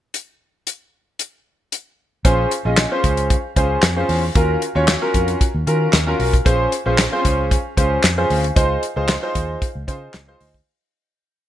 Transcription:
0.14 closed hi-hat medium
0.67 closed hi-hat medium
1.19 closed hi-hat medium
1.72 closed hi-hat medium
2.25 2.45 A#1 loud
2.25 2.50 C#4 medium
2.25 2.50 F4 medium
2.25 2.50 G#4 medium
2.25 2.50 C5 medium
2.25 kick loud
2.25 closed hi-hat medium
2.51 closed hi-hat medium
2.65 2.85 A#1 medium
2.65 2.81 C#4 medium
2.65 2.81 F4 medium
2.65 2.82 G#4 medium
2.65 2.82 D#5 medium
2.77 snare loud
2.77 clap medium
2.77 closed hi-hat medium
2.91 3.33 C#4 medium
2.91 3.33 F4 medium
2.91 3.33 G#4 medium
2.91 3.33 C5 medium
3.04 3.34 C#2 medium
3.04 kick medium
3.04 closed hi-hat medium
3.17 closed hi-hat medium
3.30 kick loud
3.30 closed hi-hat medium
3.56 3.76 C#2 medium
3.56 3.82 C#4 medium
3.56 3.82 F4 medium
3.56 3.82 G#4 medium
3.56 3.82 C5 medium
3.56 kick medium
3.56 closed hi-hat medium
3.82 4.03 F2 medium
3.82 snare loud
3.82 clap medium
3.82 closed hi-hat medium
3.96 4.22 C#4 medium
3.96 4.22 F4 medium
3.96 4.22 G#4 medium
3.96 4.22 C5 medium
4.09 4.29 E2 medium
4.09 open hi-hat medium
4.35 4.55 D#2 loud
4.35 4.60 C#4 medium
4.35 4.61 F4 medium
4.35 4.61 F#4 medium
4.35 4.61 A#4 medium
4.35 kick loud
4.35 closed hi-hat medium
4.62 closed hi-hat medium
4.75 4.95 D#2 medium
4.75 4.92 C#4 medium
4.75 4.92 F4 medium
4.75 4.92 F#4 medium
4.75 4.92 C#5 medium
4.88 snare loud
4.88 clap medium
4.88 closed hi-hat medium
5.01 5.43 C#4 medium
5.01 5.43 F4 medium
5.01 5.43 F#4 medium
5.01 5.43 A#4 medium
5.14 5.34 F2 medium
5.14 kick medium
5.14 closed hi-hat medium
5.28 closed hi-hat medium
5.41 kick loud
5.41 closed hi-hat medium
5.55 5.64 D#2 medium
5.67 5.87 D#3 medium
5.67 5.92 C#4 medium
5.67 5.92 F4 medium
5.67 5.92 F#4 medium
5.67 5.92 A#4 medium
5.67 closed hi-hat medium
5.93 6.13 D#2 medium
5.93 snare loud
5.93 clap medium
5.93 closed hi-hat medium
6.07 6.32 C#4 medium
6.07 6.32 F4 medium
6.07 6.32 F#4 medium
6.07 6.33 A#4 medium
6.19 6.39 B1 medium
6.19 open hi-hat medium
6.33 kick medium
6.33 closed hi-hat medium
6.45 6.66 A#1 loud
6.45 6.71 C#4 medium
6.45 6.71 F4 medium
6.45 6.71 G#4 medium
6.45 6.71 C5 medium
6.45 kick loud
6.45 closed hi-hat medium
6.72 closed hi-hat medium
6.86 7.06 A#1 loud
6.86 7.02 C#4 medium
6.86 7.02 F4 medium
6.86 7.02 G#4 medium
6.86 7.03 C5 medium
6.98 snare loud
6.98 clap medium
6.98 closed hi-hat medium
7.12 7.18 C4 medium
7.12 7.54 F4 medium
7.12 7.54 G#4 medium
7.12 7.54 C5 medium
7.18 7.57 C#4 medium
7.25 7.55 C#2 medium
7.25 kick medium
7.25 closed hi-hat medium
7.51 kick loud
7.51 closed hi-hat medium
7.77 7.97 C#2 medium
7.77 8.02 C#4 medium
7.77 8.03 F4 medium
7.77 8.03 G#4 medium
7.77 8.03 C5 medium
7.77 kick medium
7.77 closed hi-hat medium
8.03 8.23 F2 loud
8.03 snare medium
8.03 clap medium
8.03 closed hi-hat medium
8.17 8.43 C#4 medium
8.17 8.43 F4 medium
8.17 8.43 G#4 medium
8.17 8.43 C5 medium
8.30 8.50 D2 medium
8.30 open hi-hat medium
8.44 closed hi-hat soft
8.56 8.76 C#2 loud
8.56 8.81 D#4 medium
8.56 8.81 F4 medium
8.56 8.82 G#4 medium
8.56 8.82 C5 medium
8.56 kick loud
8.56 closed hi-hat medium
8.83 closed hi-hat medium
8.96 9.16 C#2 medium
8.96 9.13 D#4 medium
8.96 9.13 F4 medium
8.96 9.13 G#4 medium
8.96 9.13 C5 medium
9.08 snare loud
9.08 clap medium
9.08 closed hi-hat medium
9.22 9.64 D#4 medium
9.22 9.64 F4 medium
9.22 9.64 G#4 medium
9.22 9.64 C5 loud
9.35 9.55 D#2 medium
9.35 kick medium
9.35 closed hi-hat medium
9.62 kick loud
9.62 closed hi-hat medium
9.75 9.85 C#2 medium
9.87 10.08 C#3 medium
9.87 10.13 D#4 medium
9.87 10.13 F4 medium
9.87 10.13 G#4 medium
9.87 10.13 C5 medium
9.87 kick medium
9.87 closed hi-hat medium
10.14 10.34 C#2 medium
10.14 snare loud
10.14 clap medium
10.14 closed hi-hat medium
10.28 10.53 D#4 medium
10.28 10.53 F4 medium
10.28 10.53 G#4 medium
10.28 10.53 C5 medium
10.41 10.60 D2 medium
10.41 open hi-hat medium
10.54 kick medium

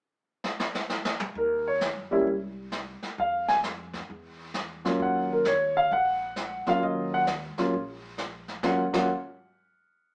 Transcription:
0.44 snare medium
0.60 snare medium
0.75 snare medium
0.90 snare medium
1.05 snare medium
1.20 mid tom medium
1.35 1.92 D#2 medium
1.35 1.66 A#4 medium
1.35 brush sweep soft
1.68 1.81 C#5 medium
1.81 snare medium
1.81 hi-hat pedal soft
1.96 2.10 F#2 medium
2.11 2.25 C#2 medium
2.11 2.25 G3 medium
2.11 2.25 A#3 medium
2.11 2.25 C#4 medium
2.11 2.25 E4 medium
2.26 2.99 C2 medium
2.26 brush sweep soft
2.72 snare medium
2.72 hi-hat pedal medium
3.03 muted upright bass stroke soft
3.03 snare soft
3.18 4.05 F2 medium
3.18 3.48 F5 medium
3.18 brush sweep soft
3.48 3.57 G#5 medium
3.48 snare soft
3.64 snare medium
3.64 hi-hat pedal medium
3.94 kick soft
3.94 snare soft
4.09 4.96 E2 medium
4.09 brush sweep soft
4.54 snare medium
4.54 hi-hat pedal medium
4.85 5.42 F#3 medium
4.85 5.42 A#3 medium
4.85 5.42 C#4 medium
4.85 5.43 F4 medium
4.85 snare soft
5.00 5.87 D#2 medium
5.00 5.31 F#5 medium
5.00 brush sweep soft
5.32 5.46 A#4 medium
5.45 5.76 C#5 medium
5.45 snare medium
5.45 hi-hat pedal medium
5.77 5.91 F5 medium
5.91 6.63 A#1 medium
5.91 6.64 F#5 medium
5.91 brush sweep soft
6.36 snare medium
6.36 hi-hat pedal medium
6.66 7.24 F#3 medium
6.66 7.24 A#3 medium
6.66 7.24 C#4 soft
6.66 7.24 F4 medium
6.66 6.82 F5 medium
6.66 muted upright bass stroke soft
6.66 snare soft
6.82 7.54 D#2 medium
6.82 7.12 D#5 medium
6.82 brush sweep soft
7.14 7.22 F#5 medium
7.27 snare medium
7.27 hi-hat pedal medium
7.58 7.72 D2 medium
7.58 7.71 F#3 medium
7.58 7.71 A#3 medium
7.58 7.72 C#4 medium
7.58 7.72 F4 medium
7.58 snare soft
7.72 8.60 A#1 medium
7.72 brush sweep soft
8.18 snare medium
8.18 hi-hat pedal soft
8.48 snare soft
8.63 8.80 D#2 medium
8.63 8.82 F#3 medium
8.63 8.82 A#3 medium
8.63 8.82 C#4 medium
8.63 8.82 F4 medium
8.63 8.82 F#5 medium
8.63 kick medium
8.63 snare medium
8.93 9.08 D#2 medium
8.93 9.07 F#3 medium
8.93 9.07 A#3 medium
8.93 9.07 C#4 medium
8.93 9.07 F4 medium
8.93 9.09 F#5 medium
8.93 kick medium
8.93 snare medium
8.93 crash medium

